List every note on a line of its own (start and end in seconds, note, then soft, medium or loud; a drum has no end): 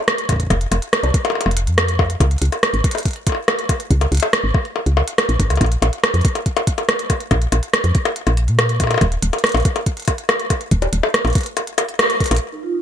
0.08 cross-stick loud
0.08 closed hi-hat medium
0.18 closed hi-hat soft
0.29 kick medium
0.29 closed hi-hat medium
0.29 high bongo medium
0.33 kick medium
0.36 kick medium
0.40 kick soft
0.40 closed hi-hat soft
0.43 kick soft
0.47 0.66 F1 medium
0.47 kick soft
0.50 kick medium
0.50 closed hi-hat medium
0.50 high bongo medium
0.61 closed hi-hat soft
0.71 0.79 F1 loud
0.71 closed hi-hat loud
0.71 high bongo medium
0.82 closed hi-hat soft
0.93 cross-stick loud
0.93 closed hi-hat medium
1.03 1.11 C2 medium
1.03 closed hi-hat soft
1.03 high bongo medium
1.14 kick loud
1.14 closed hi-hat medium
1.25 closed hi-hat soft
1.25 high bongo medium
1.30 high bongo medium
1.35 high bongo medium
1.41 closed hi-hat medium
1.41 high bongo soft
1.46 1.68 F1 loud
1.46 high bongo medium
1.51 closed hi-hat soft
1.57 closed hi-hat loud
1.67 2.16 F2 medium
1.67 closed hi-hat soft
1.78 cross-stick loud
1.78 closed hi-hat medium
1.78 high bongo soft
1.88 closed hi-hat soft
1.99 kick medium
1.99 high bongo medium
2.10 closed hi-hat soft
2.20 2.36 C#2 loud
2.20 kick medium
2.20 closed hi-hat medium
2.20 high bongo soft
2.31 closed hi-hat soft
2.38 2.50 C#2 medium
2.38 closed hi-hat soft
2.42 closed hi-hat loud
2.45 closed hi-hat soft
2.52 closed hi-hat soft
2.52 high bongo soft
2.63 cross-stick loud
2.63 closed hi-hat medium
2.73 2.82 G#1 medium
2.73 closed hi-hat soft
2.84 kick loud
2.84 closed hi-hat medium
2.91 closed hi-hat medium
2.95 closed hi-hat soft
2.95 high bongo soft
2.98 closed hi-hat soft
2.98 closed hi-hat medium
3.00 closed hi-hat soft
3.03 kick medium
3.03 closed hi-hat soft
3.06 closed hi-hat medium
3.08 closed hi-hat soft
3.11 closed hi-hat soft
3.13 closed hi-hat soft
3.16 closed hi-hat soft
3.27 kick medium
3.27 closed hi-hat medium
3.27 high bongo soft
3.29 high bongo soft
3.32 high bongo soft
3.35 high bongo soft
3.48 cross-stick loud
3.48 closed hi-hat medium
3.48 high bongo medium
3.59 closed hi-hat soft
3.69 kick medium
3.69 closed hi-hat medium
3.69 high bongo medium
3.80 closed hi-hat soft
3.91 4.07 C#2 loud
3.91 kick medium
3.91 closed hi-hat medium
4.01 closed hi-hat soft
4.01 high bongo medium
4.12 4.20 C#2 loud
4.12 closed hi-hat soft
4.15 closed hi-hat medium
4.17 closed hi-hat medium
4.20 closed hi-hat medium
4.23 closed hi-hat soft
4.23 high bongo medium
4.33 cross-stick loud
4.33 closed hi-hat medium
4.44 4.52 G#1 medium
4.54 kick loud
4.54 high bongo soft
4.65 closed hi-hat soft
4.76 high bongo soft
4.86 5.02 C#2 medium
4.86 closed hi-hat soft
4.97 high bongo medium
5.08 closed hi-hat medium
5.18 cross-stick loud
5.18 closed hi-hat medium
5.18 high bongo soft
5.29 5.37 A#1 loud
5.29 closed hi-hat soft
5.40 5.52 G#1 medium
5.40 kick medium
5.40 closed hi-hat medium
5.50 5.58 C#2 loud
5.50 closed hi-hat soft
5.50 high bongo soft
5.56 closed hi-hat soft
5.56 high bongo soft
5.61 5.77 A#1 loud
5.61 kick medium
5.61 closed hi-hat medium
5.61 high bongo soft
5.64 closed hi-hat soft
5.64 high bongo soft
5.72 closed hi-hat soft
5.82 5.90 A#1 loud
5.82 closed hi-hat medium
5.82 high bongo medium
5.93 closed hi-hat soft
6.04 cross-stick loud
6.04 closed hi-hat medium
6.04 high bongo medium
6.14 6.22 F2 medium
6.14 closed hi-hat soft
6.21 closed hi-hat soft
6.25 kick loud
6.25 closed hi-hat medium
6.28 closed hi-hat soft
6.35 closed hi-hat soft
6.35 high bongo soft
6.46 kick medium
6.46 closed hi-hat medium
6.57 closed hi-hat soft
6.57 high bongo medium
6.67 kick medium
6.67 closed hi-hat medium
6.78 closed hi-hat soft
6.78 high bongo soft
6.89 cross-stick loud
6.89 closed hi-hat medium
6.99 closed hi-hat soft
7.10 kick medium
7.10 closed hi-hat medium
7.10 high bongo medium
7.20 closed hi-hat soft
7.31 7.47 A#1 loud
7.31 kick medium
7.31 closed hi-hat medium
7.31 high bongo medium
7.42 closed hi-hat soft
7.52 7.60 A#1 loud
7.52 closed hi-hat medium
7.52 high bongo medium
7.63 closed hi-hat soft
7.73 cross-stick loud
7.73 closed hi-hat medium
7.84 7.92 F2 medium
7.84 closed hi-hat soft
7.95 kick loud
7.95 closed hi-hat medium
8.05 closed hi-hat soft
8.05 high bongo medium
8.16 closed hi-hat medium
8.27 8.50 A#1 loud
8.27 closed hi-hat soft
8.27 high bongo medium
8.37 closed hi-hat medium
8.48 8.97 A#2 medium
8.48 closed hi-hat soft
8.59 cross-stick loud
8.59 closed hi-hat medium
8.59 high bongo soft
8.69 closed hi-hat soft
8.80 kick medium
8.80 closed hi-hat medium
8.80 high bongo soft
8.84 high bongo soft
8.87 closed hi-hat soft
8.87 high bongo soft
8.91 high bongo medium
8.94 high bongo medium
8.98 closed hi-hat medium
8.98 high bongo medium
9.01 9.17 D#1 loud
9.01 kick medium
9.01 high bongo medium
9.12 closed hi-hat soft
9.22 9.31 D#1 medium
9.22 closed hi-hat medium
9.33 closed hi-hat soft
9.33 high bongo soft
9.38 closed hi-hat soft
9.44 cross-stick loud
9.44 closed hi-hat medium
9.47 closed hi-hat soft
9.49 closed hi-hat soft
9.52 9.62 A#1 medium
9.52 closed hi-hat soft
9.55 closed hi-hat soft
9.55 high bongo medium
9.57 closed hi-hat soft
9.60 closed hi-hat soft
9.63 closed hi-hat soft
9.65 kick loud
9.65 closed hi-hat medium
9.76 closed hi-hat soft
9.76 high bongo medium
9.86 kick medium
9.86 closed hi-hat medium
9.97 closed hi-hat soft
10.00 closed hi-hat soft
10.02 closed hi-hat soft
10.05 closed hi-hat soft
10.08 kick medium
10.08 closed hi-hat medium
10.08 high bongo medium
10.18 closed hi-hat soft
10.29 cross-stick loud
10.29 closed hi-hat medium
10.29 high bongo medium
10.39 closed hi-hat soft
10.50 kick medium
10.50 closed hi-hat medium
10.50 high bongo medium
10.61 closed hi-hat soft
10.71 10.88 D#1 loud
10.71 kick medium
10.71 closed hi-hat medium
10.82 closed hi-hat soft
10.82 high bongo medium
10.93 11.01 D#1 medium
10.93 closed hi-hat medium
11.03 high bongo medium
11.14 cross-stick loud
11.14 closed hi-hat medium
11.25 11.33 A#1 medium
11.25 closed hi-hat soft
11.25 high bongo medium
11.27 closed hi-hat soft
11.30 closed hi-hat soft
11.33 kick loud
11.33 closed hi-hat soft
11.35 closed hi-hat medium
11.38 closed hi-hat soft
11.41 closed hi-hat soft
11.43 closed hi-hat soft
11.46 closed hi-hat soft
11.57 closed hi-hat medium
11.57 high bongo medium
11.67 closed hi-hat soft
11.78 closed hi-hat medium
11.78 high bongo medium
11.89 closed hi-hat soft
11.99 cross-stick loud
11.99 closed hi-hat medium
11.99 high bongo medium
12.10 closed hi-hat soft
12.20 kick medium
12.20 closed hi-hat medium
12.24 closed hi-hat soft
12.26 closed hi-hat medium
12.28 12.39 A#1 medium
12.28 closed hi-hat soft
12.31 closed hi-hat medium
12.31 high bongo medium
12.35 closed hi-hat soft
12.36 closed hi-hat medium
12.38 closed hi-hat soft
12.52 12.62 D#4 medium
12.63 12.72 F4 medium
12.74 12.82 D#4 medium